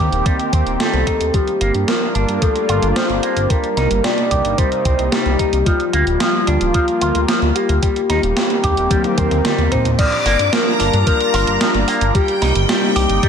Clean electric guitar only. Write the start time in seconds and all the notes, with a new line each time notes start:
0.00 G4
0.26 G3
0.53 C4
0.80 G3
1.07 D#4
1.34 F3
1.61 A#3
1.88 F3
2.15 D4
2.42 F3
2.69 F4
2.96 F3
3.23 A#3
3.50 G3
3.77 D#4
4.04 G3
4.31 G4
4.58 G3
4.85 C4
5.12 G3
5.39 D#4
5.66 F3
5.93 A#3
6.20 F3
6.47 D4
6.74 F3
7.01 F4
7.28 F3
7.55 A#3
7.82 G3
8.09 D#4
8.37 G3
8.64 G4
8.91 G3
9.18 C4
9.45 G3
9.72 D#4
9.99 F3
10.26 A#3
10.53 F3
10.80 D4
11.07 F3
11.34 F4
11.61 F3
11.88 A#3
12.15 G3
12.42 D#4
12.69 G3
12.96 G4
13.23 G3